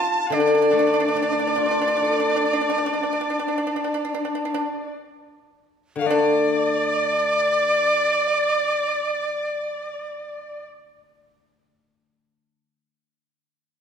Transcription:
0.00 0.31 G3 medium
0.00 0.30 F4 medium
0.00 0.28 A5 loud
0.00 0.35 A5 loud
0.27 2.90 D3 medium
0.27 0.34 F5 medium
0.32 0.39 D4 medium
0.32 4.94 D5 medium
0.40 0.46 D4 soft
0.47 0.54 D4 medium
0.55 0.61 D4 soft
0.62 0.70 D4 medium
0.71 2.45 A3 soft
0.71 0.78 D4 soft
0.79 0.86 D4 medium
0.87 0.92 D4 soft
0.94 0.99 D4 medium
1.00 1.07 D4 soft
1.08 1.15 D4 soft
1.15 2.91 D4 soft
1.15 1.21 D4 soft
1.23 1.31 D4 soft
1.32 1.38 D4 soft
1.39 1.46 D4 medium
1.47 1.55 D4 soft
1.56 1.63 D4 soft
1.56 3.38 F4 soft
1.66 1.70 D4 soft
1.71 1.79 D4 soft
1.81 1.87 D4 soft
1.88 1.95 D4 medium
1.97 2.04 D4 soft
2.02 2.11 D4 soft
2.02 3.88 A4 medium
2.12 2.19 D4 soft
2.20 2.28 D4 soft
2.30 2.35 D4 soft
2.36 2.44 D4 soft
2.45 2.52 D4 soft
2.53 2.60 D4 medium
2.61 2.68 D4 soft
2.70 2.77 D4 medium
2.78 2.85 D4 soft
2.86 2.93 D4 soft
2.94 3.02 D4 soft
3.03 3.12 D4 soft
3.13 3.20 D4 soft
3.21 3.29 D4 soft
3.30 3.38 D4 soft
3.39 3.47 D4 soft
3.48 3.57 D4 soft
3.58 3.66 D4 soft
3.67 3.75 D4 soft
3.76 3.83 D4 medium
3.84 3.93 D4 soft
3.94 4.03 D4 medium
4.05 4.13 D4 soft
4.14 4.23 D4 medium
4.25 4.33 D4 soft
4.35 4.43 D4 medium
4.45 4.53 D4 medium
4.54 4.63 D4 medium
5.96 12.59 D3 medium
5.96 6.08 F5 medium
6.01 11.67 A3 medium
6.06 10.82 D4 medium
6.06 10.66 D5 loud
6.06 10.64 D5 loud
6.11 10.66 D4 medium

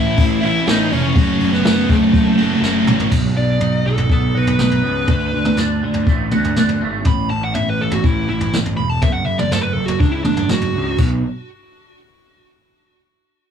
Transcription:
0.00 0.14 A1 medium
0.00 0.41 A2 loud
0.00 0.41 E3 medium
0.00 0.42 A3 loud
0.00 0.41 C#4 loud
0.00 0.40 E4 medium
0.00 0.40 E4 loud
0.00 0.44 E5 medium
0.17 0.58 A1 medium
0.17 kick loud
0.17 open hi-hat loud
0.42 0.64 A2 medium
0.42 0.65 E3 medium
0.42 0.66 A3 medium
0.42 0.66 C#4 medium
0.42 0.65 E4 medium
0.42 0.66 E4 medium
0.42 0.69 E5 medium
0.42 open hi-hat medium
0.65 0.88 A1 loud
0.65 1.14 A2 medium
0.65 1.14 E3 medium
0.65 1.15 A3 medium
0.65 1.15 C#4 medium
0.65 0.91 D#4 medium
0.65 1.16 E4 medium
0.65 snare loud
0.65 open hi-hat medium
0.70 0.93 D#5 loud
0.92 1.12 F1 medium
0.92 1.49 C#4 medium
0.92 1.50 C#5 medium
0.92 open hi-hat medium
1.14 1.36 F#1 loud
1.14 2.36 F#3 loud
1.14 2.37 A3 loud
1.14 2.37 C#4 loud
1.14 2.36 F#4 loud
1.14 kick loud
1.14 open hi-hat medium
1.40 1.62 F#1 medium
1.40 open hi-hat medium
1.53 1.87 B3 medium
1.53 1.91 B4 loud
1.53 snare soft
1.64 1.86 F#1 medium
1.64 snare loud
1.64 open hi-hat medium
1.89 2.10 F#1 medium
1.89 2.84 A3 medium
1.89 2.84 A4 medium
1.89 kick loud
1.89 open hi-hat medium
2.13 2.55 F#1 medium
2.13 kick loud
2.13 open hi-hat medium
2.37 2.60 F#3 medium
2.37 2.61 A3 medium
2.37 2.62 C#4 medium
2.37 2.61 F#4 medium
2.37 open hi-hat medium
2.61 2.83 F#1 medium
2.61 3.10 F#3 medium
2.61 3.10 A3 medium
2.61 3.11 C#4 medium
2.61 3.11 F#4 medium
2.61 snare medium
2.87 3.08 A1 medium
2.87 mid tom loud
3.00 floor tom medium
3.11 3.35 B1 medium
3.11 4.35 B2 medium
3.11 kick loud
3.11 floor tom medium
3.11 crash loud
3.36 3.60 B1 medium
3.36 3.84 D5 medium
3.61 3.84 B1 medium
3.61 4.58 D#4 medium
3.61 floor tom medium
3.85 4.09 B1 medium
3.85 5.07 F#3 medium
3.85 4.10 A4 medium
3.98 floor tom medium
4.09 4.34 B1 medium
4.09 4.83 B3 medium
4.09 4.35 A4 medium
4.09 kick loud
4.35 4.59 B1 medium
4.35 5.09 F#4 medium
4.35 4.60 B4 medium
4.47 floor tom medium
4.59 4.83 B1 medium
4.59 5.09 D#4 medium
4.59 5.56 B4 medium
4.59 snare medium
4.59 mid tom medium
4.71 floor tom medium
4.83 5.08 C#2 medium
4.83 5.09 B3 medium
5.07 5.32 D2 loud
5.07 5.82 D3 medium
5.07 kick loud
5.07 floor tom medium
5.33 5.57 D2 medium
5.45 mid tom medium
5.57 5.82 D2 medium
5.57 6.55 D4 medium
5.57 snare medium
5.57 floor tom medium
5.83 6.06 D2 medium
5.83 7.06 D3 medium
5.94 floor tom medium
6.07 6.31 A1 medium
6.07 6.80 A3 medium
6.07 kick loud
6.31 6.56 D2 medium
6.31 7.06 F#4 medium
6.31 mid tom medium
6.44 floor tom medium
6.56 6.81 D2 medium
6.56 7.06 D4 medium
6.56 snare medium
6.56 mid tom medium
6.69 floor tom medium
6.81 7.06 G#1 medium
6.81 7.06 A3 medium
7.05 7.29 A1 medium
7.05 7.30 B5 loud
7.05 kick loud
7.05 floor tom medium
7.30 7.55 A1 medium
7.30 7.42 A5 medium
7.44 7.55 F#5 medium
7.54 7.79 A1 medium
7.54 7.67 E5 medium
7.54 floor tom medium
7.70 7.80 B4 medium
7.81 8.03 A1 medium
7.81 7.93 A4 medium
7.91 8.05 F#4 medium
7.91 floor tom medium
8.04 8.28 A1 medium
8.04 8.28 E4 medium
8.04 kick loud
8.29 8.53 A1 medium
8.29 8.53 E4 loud
8.41 floor tom medium
8.53 8.77 A1 medium
8.53 snare medium
8.53 mid tom medium
8.65 floor tom medium
8.77 9.01 E1 medium
8.77 8.90 B5 medium
8.90 9.02 A5 medium
9.02 9.24 F#1 medium
9.02 9.13 E5 medium
9.02 kick loud
9.02 floor tom medium
9.13 9.25 F#5 medium
9.25 9.49 F#1 medium
9.25 9.38 E5 medium
9.39 9.51 D5 medium
9.39 mid tom medium
9.50 9.74 F#1 medium
9.50 9.62 A4 loud
9.50 snare medium
9.50 floor tom medium
9.63 9.73 B4 medium
9.73 9.99 F#1 loud
9.73 9.86 A4 medium
9.86 9.99 F#4 loud
9.86 floor tom medium
9.99 10.24 C#2 medium
9.99 10.11 D4 medium
9.99 kick loud
10.11 10.24 E4 medium
10.24 10.49 F#1 medium
10.24 10.48 D4 medium
10.24 mid tom medium
10.37 floor tom medium
10.49 10.73 F#1 medium
10.49 10.97 F#4 loud
10.49 snare medium
10.49 mid tom medium
10.61 floor tom medium
10.74 10.98 C#2 medium
10.98 11.21 B1 loud
10.98 kick loud
10.98 crash medium

